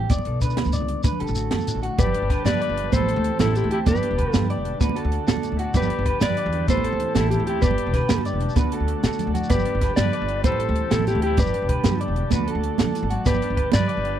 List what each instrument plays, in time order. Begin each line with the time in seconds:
Already playing: clean electric guitar G3 G4
0.10 upright bass G1, clean electric guitar G2 B3 D5, kick, closed hi-hat, high conga, low conga, shekere
0.18 low conga
0.25 upright bass B1, clean electric guitar A4, closed hi-hat
0.34 low conga
0.41 clean electric guitar D3 D4 B4, kick, closed hi-hat, shekere
0.50 shekere
0.57 snare, closed hi-hat, high conga, low conga
0.65 upright bass D2, low conga, shekere
0.72 clean electric guitar G2 B3 D5, closed hi-hat, shekere
0.81 upright bass C#2
0.88 closed hi-hat, low conga
0.96 low conga
1.04 upright bass D2, clean electric guitar D3 D4 B4, kick, closed hi-hat, high conga, low conga, shekere
1.12 low conga
1.20 upright bass D3, clean electric guitar G4 A4, closed hi-hat
1.27 upright bass A1, shekere
1.35 clean electric guitar A3 F#4, closed hi-hat, shekere
1.51 upright bass F#2, clean electric guitar A4, snare, closed hi-hat, high conga, low conga, shekere
1.59 low conga, shekere
1.67 clean electric guitar A2 D4, closed hi-hat, shekere
1.75 upright bass A1
1.83 clean electric guitar F#4, closed hi-hat
1.91 low conga
1.98 upright bass G1, clean electric guitar G2 G4 B4 D5, trumpet G4, transistor combo organ B4 G5 A5, kick, closed hi-hat, high conga, shekere
2.06 low conga
2.14 clean electric guitar D4, closed hi-hat, low conga
2.22 upright bass G1
2.30 clean electric guitar D3 B4, kick, snare, closed hi-hat
2.37 low conga
2.45 upright bass G2, clean electric guitar G4 D5, trumpet B4, snare, closed hi-hat, high conga, shekere
2.53 low conga
2.61 clean electric guitar G2 D5, closed hi-hat
2.69 upright bass G1
2.77 clean electric guitar D4, closed hi-hat
2.84 low conga
2.92 upright bass A1, clean electric guitar A2 G4 B4 C5, trumpet A4, transistor combo organ C5, kick, closed hi-hat, high conga, shekere
3.00 low conga
3.08 clean electric guitar C4 A4, closed hi-hat
3.16 upright bass D2
3.24 clean electric guitar E3, closed hi-hat
3.39 upright bass A1, trumpet E4, clean electric guitar G4 A4, snare, closed hi-hat, high conga, shekere
3.47 low conga
3.55 clean electric guitar E2 G4, trumpet E4, closed hi-hat, low conga, shekere
3.64 upright bass D2
3.71 clean electric guitar C4 G4, trumpet E4, closed hi-hat
3.86 upright bass G1, clean electric guitar G2 D3 B3 D4 G4 B4 D5, trumpet G4, transistor combo organ B4 A5, kick, closed hi-hat, high conga, shekere
3.95 low conga, shekere
4.03 clean electric guitar D4, closed hi-hat, low conga
4.11 upright bass E1
4.18 clean electric guitar D3 B4, kick, closed hi-hat
4.26 low conga
4.32 upright bass G2, trumpet F4, clean electric guitar G4 A4, snare, closed hi-hat, high conga, shekere
4.42 low conga
4.49 clean electric guitar G2 D5, closed hi-hat
4.58 upright bass E1
4.65 clean electric guitar D4, closed hi-hat
4.74 low conga
4.80 upright bass D2, clean electric guitar D3 F#4 B4, transistor combo organ D5 F#5, kick, closed hi-hat, high conga, shekere
4.89 low conga
4.95 clean electric guitar F#4 A4, closed hi-hat
5.05 upright bass D2
5.12 closed hi-hat
5.27 upright bass D3, clean electric guitar F#4 A4, snare, closed hi-hat, high conga, shekere
5.37 low conga
5.42 clean electric guitar A2, closed hi-hat, low conga, shekere
5.52 upright bass D2
5.57 clean electric guitar E4 F#4, closed hi-hat
5.64 clean electric guitar F#4
5.73 upright bass G1, clean electric guitar G2 G4 B4 D5, transistor combo organ B4 G5, kick, closed hi-hat, high conga, shekere
5.77 trumpet G4
5.82 low conga, shekere
5.90 clean electric guitar B3, closed hi-hat, low conga
5.98 upright bass G1, muted clean electric guitar stroke
6.06 clean electric guitar D3 B4, kick, closed hi-hat
6.15 low conga
6.21 upright bass G2, clean electric guitar G4 D5, trumpet B4, snare, closed hi-hat, high conga, shekere
6.30 low conga
6.37 clean electric guitar G2 D5, closed hi-hat
6.46 upright bass E2
6.53 clean electric guitar D4, closed hi-hat
6.61 low conga
6.68 upright bass A1, clean electric guitar A2 G4 B4 C5, trumpet A4, transistor combo organ C5, kick, closed hi-hat, high conga, shekere
6.77 low conga
6.84 clean electric guitar C4 A4, closed hi-hat
6.92 upright bass D2
6.99 clean electric guitar E3, closed hi-hat
7.15 upright bass A1, trumpet E4, clean electric guitar G4 A4, snare, closed hi-hat, high conga, shekere
7.30 clean electric guitar E2 G4, trumpet E4, closed hi-hat, low conga, shekere
7.40 upright bass D2
7.47 clean electric guitar C4 G4, trumpet E4, closed hi-hat
7.61 upright bass G1, clean electric guitar G2 G4 B4 D5, trumpet G4, transistor combo organ B4 A5, kick, closed hi-hat, high conga, shekere
7.71 low conga
7.78 muted clean electric guitar stroke, closed hi-hat
7.86 upright bass E1, low conga
7.93 clean electric guitar D3 B4, kick, snare, closed hi-hat
8.09 upright bass G2, clean electric guitar G4, snare, closed hi-hat, high conga, shekere
8.18 low conga
8.25 clean electric guitar G2 D5, closed hi-hat, shekere
8.33 upright bass E1, low conga
8.40 clean electric guitar D4, closed hi-hat
8.49 shekere
8.55 upright bass D2, clean electric guitar D3 A3 D4 F#4 B4, transistor combo organ D5 F#5, kick, closed hi-hat, high conga, shekere
8.64 low conga
8.72 clean electric guitar F#4 A4, closed hi-hat
8.80 upright bass D2
8.87 clean electric guitar A3, closed hi-hat
9.03 upright bass D3, clean electric guitar F#4 A4, snare, closed hi-hat, high conga, shekere
9.12 shekere
9.18 clean electric guitar A2, closed hi-hat, low conga, shekere
9.27 upright bass D2
9.34 clean electric guitar F#4, muted clean electric guitar stroke, closed hi-hat, low conga, shekere
9.43 shekere
9.49 upright bass G1, clean electric guitar G2 G4 B4 D5, trumpet G4, transistor combo organ B4 G5, kick, closed hi-hat, high conga, shekere
9.58 low conga, shekere
9.65 clean electric guitar D4, closed hi-hat
9.75 upright bass G1
9.81 clean electric guitar D3 B4, kick, snare, closed hi-hat
9.90 low conga
9.96 upright bass G2, clean electric guitar G4 D5, trumpet B4, snare, closed hi-hat, high conga, shekere
10.05 low conga
10.13 clean electric guitar G2 D5, closed hi-hat
10.22 upright bass G1
10.29 clean electric guitar D4, closed hi-hat
10.36 low conga
10.44 upright bass A1, clean electric guitar A2 E3 G3 C4 G4 B4 C5, trumpet A4, transistor combo organ C5, kick, closed hi-hat, high conga, shekere
10.52 low conga
10.59 clean electric guitar C4 A4, closed hi-hat
10.69 upright bass D2
10.76 clean electric guitar E3, closed hi-hat
10.91 upright bass A1, clean electric guitar C3 A4, trumpet E4, snare, closed hi-hat, high conga, shekere
11.00 low conga
11.07 clean electric guitar B2 G4, trumpet E4, closed hi-hat, low conga, shekere
11.15 upright bass D2
11.22 clean electric guitar A2 G4, trumpet E4, closed hi-hat
11.37 upright bass G1, clean electric guitar G2 G4 B4 D5, trumpet G4, transistor combo organ B4, kick, closed hi-hat, high conga, shekere
11.46 low conga, shekere
11.54 clean electric guitar D4, closed hi-hat, low conga
11.62 upright bass E1
11.68 clean electric guitar D3 B4, kick, closed hi-hat
11.77 low conga
11.84 upright bass G2, clean electric guitar G4, snare, closed hi-hat, high conga, shekere
11.91 low conga
12.01 clean electric guitar G2 D5, closed hi-hat
12.08 upright bass E1
12.16 clean electric guitar D4, closed hi-hat
12.23 low conga
12.31 upright bass D2, clean electric guitar D3 F#4 B4, transistor combo organ D5 F#5, kick, closed hi-hat, high conga, shekere
12.39 low conga
12.48 clean electric guitar F#4 A4, closed hi-hat
12.55 upright bass D2
12.63 clean electric guitar A3, closed hi-hat
12.78 upright bass D3, clean electric guitar D3 A4, snare, closed hi-hat, high conga, shekere
12.86 low conga
12.95 clean electric guitar E3, closed hi-hat, low conga, shekere
13.02 upright bass G#1
13.10 clean electric guitar F#3 F#4, closed hi-hat
13.26 upright bass G1, clean electric guitar G2 G4 B4 D5, trumpet G4, transistor combo organ B4 G5, kick, closed hi-hat, high conga, shekere
13.34 low conga, shekere
13.41 clean electric guitar D4, closed hi-hat, low conga
13.50 upright bass G1
13.57 clean electric guitar D3 B4, kick, closed hi-hat
13.65 low conga
13.72 upright bass G2, clean electric guitar G4 D5, trumpet B4, snare, closed hi-hat, high conga, shekere
13.80 low conga
13.88 clean electric guitar G2 D5, closed hi-hat
13.97 upright bass G1
14.05 clean electric guitar D4, closed hi-hat
14.12 low conga